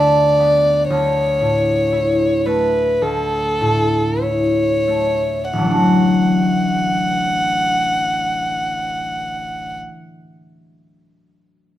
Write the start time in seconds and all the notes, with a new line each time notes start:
Already playing: D2 D3 B3 D4 D5
0.40 B3
0.89 D2 C#5
1.41 A2
1.92 E4
2.46 A3 B4
3.02 D2 A4
3.61 A2
4.22 E4 C#5
4.88 A3
5.52 D1 F#5
5.58 A1
5.62 F#3
5.67 A3
5.71 D4 F#4